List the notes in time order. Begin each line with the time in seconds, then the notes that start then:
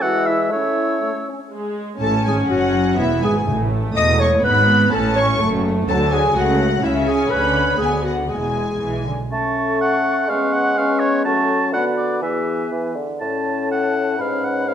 0.01 E3 G#3 E4 F#4 F#5 E6
0.26 E4 E5
0.50 A3 C#4 E4 C#5 E6
1.01 A3
1.28 C#4
1.52 G#3
2.01 A1 A2 C#4 A4 A5
2.26 G#1 G#2 G#4 G#5
2.50 F#1 F#2 F#4 F#5
2.97 E1 E2 B3 E4 E5
3.22 G#1 G#2 G#4 G#5
3.47 A1 A2 A3
3.96 E1 E2 D#5 D#6
4.20 C#5 C#6
4.44 G#1 G#2 B3 B4 B5
4.92 A1 A2 C#4 A4 A5
5.15 C#5 C#6
5.40 F#1 F#2 A3
5.88 D2 D3 F#3 A4 A5
6.13 G#4 G#5
6.35 C#2 C#3 A3 F#4 F#5
6.82 C#2 C#3 C#4 E4 E5
7.07 G#4 G#5
7.30 D2 D3 B4 B5
7.78 D2 D3 B3 G#4
7.82 G#5
8.03 F#4 F#5
8.29 E1 E2 G#3 G#4 G#5
8.82 B1 E3
9.07 D3
9.31 A3 C#4 A4 A5 C#6
9.81 F#5
10.29 G#3 B3 C#4 B4 F5 C#6
10.53 F#5
10.77 B3 C#4 B4 F5 C#6
11.00 C#5
11.25 F#3 A3 C#4 A4 A5 C#6
11.73 D3 B3 F#4 B4 F#5 B5
11.97 D5
12.21 E3 B3 G#4 B4 E5 G#5
12.71 E3
12.96 D3
13.20 A2 C#4 A4 C#5 A5
13.72 F#5
14.19 G#2 C#4 B4 C#5 F5 B5
14.44 F#5
14.67 C#4 B4 C#5 F5 B5